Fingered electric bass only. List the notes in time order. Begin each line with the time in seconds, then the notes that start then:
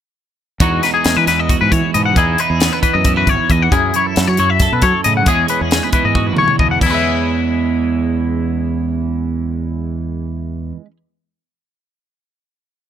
0.60 E2
1.05 E2
1.17 E3
1.27 E2
1.62 G#2
1.71 E3
1.95 G#2
2.16 E2
2.50 E2
2.95 F#2
3.27 G#1
3.50 E2
3.72 F#2
4.17 F#2
4.28 F#3
4.39 F#2
4.72 B2
4.82 F#3
5.06 A2
5.26 E2
5.61 E2
6.05 G#2
6.37 B1
6.59 E2
6.81 E2